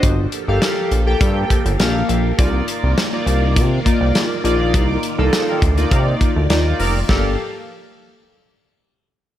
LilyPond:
<<
  \new Staff \with { instrumentName = "Horn section" } { \time 4/4 \key g \minor \tempo 4 = 102 r1 | r1 | r4 r16 <g' bes' d''>16 r8 <g' bes' d''>16 r4 r16 <g' bes' d''>8 | <bes a' d''>8 r2. r8 | }
  \new Staff \with { instrumentName = "Analog polysynth" } { \time 4/4 \key g \minor r8. <bes g' a' f''>8. r16 <bes g' a' g''>4 r16 <bes g' a' f''>8. r16 | <bes ees' f' d''>4 r16 <bes ees' f' d''>4 r16 <bes ees' f' d''>8. r16 <bes ees' f' d''>8~ | <bes ees' f' d''>8 r16 <bes ees' f' a'>8. r16 <bes ees' f' d''>4 r16 <bes ees' f' d''>8. r16 | <bes g' a' f''>8 r2. r8 | }
  \new Staff \with { instrumentName = "String machine" } { \time 4/4 \key g \minor <f bes g' a'>1 | <ees f' d''>1~ | <ees f' d''>1 | <f bes g' a'>8 r2. r8 | }
  \new Staff \with { instrumentName = "Analog synth bass" } { \clef bass \time 4/4 \key g \minor g,,8 r16 g,,16 r8 bes,,8 g,8 r16 g,,16 bes,,8 bes,,8 | c,8 r16 c,16 r8 c,8 c8 r16 c,16 r8 bes,,8 | c,8 r16 c,16 r8 d,8 c8 r16 d,16 ees,8 f,,8 | g,,8 r2. r8 | }
  \new DrumStaff \with { instrumentName = "Drums" } \drummode { \time 4/4 <hh bd>8 hh8 <hh sn>8 hh8 <hh bd>8 <hh bd>16 hh16 <hh sn>8 hh8 | <hh bd>8 hh8 <hh sn>8 hh8 <hh bd>8 <hh bd>8 <hh sn>8 hh8 | <hh bd>8 hh8 <hh sn>8 <hh bd>16 hh16 <hh bd>8 <hh bd>8 <hh sn>8 hho8 | <bd sn>4 r4 r4 r4 | }
>>